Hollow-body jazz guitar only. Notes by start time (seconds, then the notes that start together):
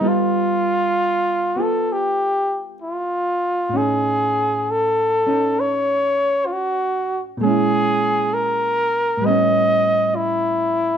0.01 G3 B3 F4
0.05 A4
1.56 B3 F4 A4
3.69 A2
3.73 C#4 D#4
5.27 C#4 D#4
7.37 A#2 G#3
7.44 C#4 E4
9.17 A2
9.21 G3
9.26 B3 C#4